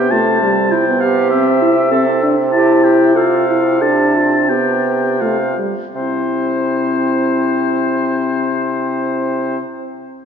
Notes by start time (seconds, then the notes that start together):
Already playing: C3 B3 G4 G5
0.11 A3 F4 A5
0.42 G3
0.71 C3 E4 G5
0.87 B3
1.01 G4 F5
1.30 C4 E5
1.61 E4
1.91 C4 A4
2.23 D4
2.52 E4 G4 A5
2.84 G4 G5
3.16 F4 A4 F5
3.49 E4
3.82 D4 G4 A5
4.16 F4
4.49 B3 G4 G5
5.21 A3 F4 F5
5.58 G3
5.95 C3 C4 E4 C5